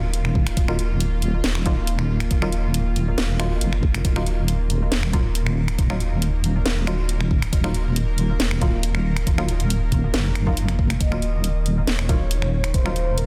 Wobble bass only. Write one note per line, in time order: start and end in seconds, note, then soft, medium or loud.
0.00 0.55 D#1 loud
0.57 1.42 D#1 loud
1.44 2.29 D#1 loud
2.31 3.16 D#1 loud
3.18 3.60 D#1 medium
3.61 4.03 F#1 medium
4.05 4.90 D#1 loud
4.91 5.77 D#1 loud
5.78 6.64 D#1 loud
6.66 7.51 D#1 medium
7.53 8.38 D#1 loud
8.40 9.25 D#1 medium
9.27 10.12 D#1 loud
10.14 10.99 F#1 medium
11.01 11.86 D#1 loud
11.87 12.73 D#1 medium
12.74 13.26 D#1 loud